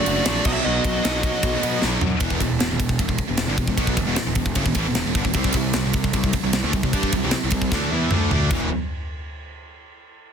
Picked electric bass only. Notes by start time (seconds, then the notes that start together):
0.07 F#1
0.26 A#1
0.46 B1
0.66 B1
0.85 B1
1.05 B1
1.43 B1
1.63 B2
1.83 B1
2.01 F#2
2.21 E1
2.41 E1
2.61 E1
2.70 E1
2.80 E1
3.00 E1
3.28 E1
3.48 G1
3.58 E1
3.68 E1
3.77 B1
3.97 E1
4.07 E1
4.27 E1
4.36 E1
4.56 F#1
4.66 E1
4.76 A1
4.84 E1
4.94 E1
5.05 E1
5.15 G1
5.25 E1
5.35 C2
5.54 C2
5.75 C2
5.86 C2
5.94 C2
6.14 C2
6.43 C2
6.64 D2
6.74 C2
6.84 C2
6.93 G2
7.13 C2
7.24 C2
7.44 C2
7.52 C2
7.72 D2
7.92 E2
8.12 D2
8.33 D2
8.51 E1